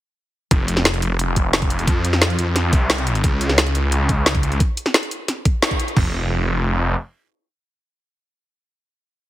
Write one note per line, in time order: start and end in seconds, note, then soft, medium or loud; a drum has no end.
0.51 1.86 F1 loud
0.51 kick loud
0.51 closed hi-hat medium
0.68 closed hi-hat medium
0.77 snare soft
0.85 snare loud
0.85 closed hi-hat medium
0.94 closed hi-hat soft
1.02 closed hi-hat medium
1.19 closed hi-hat loud
1.36 kick medium
1.36 closed hi-hat medium
1.53 snare loud
1.53 closed hi-hat loud
1.62 kick loud
1.62 closed hi-hat soft
1.70 closed hi-hat medium
1.79 closed hi-hat soft
1.87 2.37 F2 loud
1.87 kick loud
1.87 closed hi-hat medium
2.05 closed hi-hat medium
2.13 snare soft
2.22 snare loud
2.22 closed hi-hat medium
2.30 closed hi-hat soft
2.39 2.71 F2 loud
2.39 closed hi-hat medium
2.56 snare soft
2.56 closed hi-hat medium
2.73 3.22 C2 loud
2.73 kick loud
2.73 closed hi-hat medium
2.90 snare loud
2.90 closed hi-hat medium
2.98 closed hi-hat soft
3.07 closed hi-hat medium
3.15 closed hi-hat soft
3.24 4.59 C#2 loud
3.24 kick loud
3.24 closed hi-hat medium
3.41 closed hi-hat medium
3.49 snare soft
3.58 snare loud
3.58 closed hi-hat medium
3.66 closed hi-hat soft
3.75 closed hi-hat medium
3.92 closed hi-hat medium
4.09 kick medium
4.09 closed hi-hat medium
4.26 snare loud
4.26 closed hi-hat medium
4.35 kick loud
4.35 closed hi-hat soft
4.43 closed hi-hat medium
4.52 closed hi-hat soft
4.60 kick loud
4.60 closed hi-hat medium
4.77 closed hi-hat medium
4.86 snare soft
4.94 snare loud
4.94 closed hi-hat medium
5.03 closed hi-hat soft
5.11 closed hi-hat medium
5.28 snare soft
5.28 closed hi-hat medium
5.45 kick loud
5.45 closed hi-hat medium
5.62 snare loud
5.62 closed hi-hat medium
5.71 kick medium
5.71 closed hi-hat soft
5.80 closed hi-hat medium
5.88 closed hi-hat soft
5.97 6.95 F1 loud
5.97 kick loud
5.97 floor tom loud
5.97 crash medium